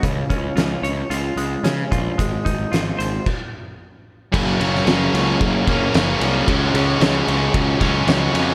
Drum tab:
CC |----------------|--------x-------|x---------------|----------------|
RD |----------------|----------------|--x-x-x-x-x-x-x-|x-x-x-x-x-x-x-x-|
HH |x-x-x-x-x-x-x-x-|x-x-x-x---------|----------------|----------------|
SD |----o-------o---|----o-----------|---oo-------o---|----o-------o---|
BD |o-o-----------o-|o-o-----o-------|o-------o-o-----|o-------o-o-----|